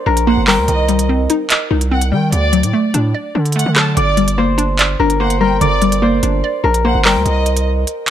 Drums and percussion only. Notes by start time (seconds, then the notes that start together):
0.17 closed hi-hat
0.47 clap, open hi-hat
0.68 closed hi-hat
0.89 closed hi-hat
0.99 closed hi-hat
1.30 closed hi-hat
1.50 clap, closed hi-hat
1.81 closed hi-hat
2.01 closed hi-hat
2.32 closed hi-hat
2.53 closed hi-hat
2.63 closed hi-hat
2.94 closed hi-hat
3.46 closed hi-hat
3.52 closed hi-hat
3.59 closed hi-hat
3.76 cross-stick, clap, closed hi-hat
3.97 closed hi-hat
4.17 closed hi-hat
4.28 closed hi-hat
4.58 closed hi-hat
4.79 clap, closed hi-hat
5.10 closed hi-hat
5.30 closed hi-hat
5.61 closed hi-hat
5.82 closed hi-hat
5.92 closed hi-hat
6.23 closed hi-hat
6.74 closed hi-hat
7.05 clap, open hi-hat
7.26 closed hi-hat
7.46 closed hi-hat
7.57 closed hi-hat
7.87 closed hi-hat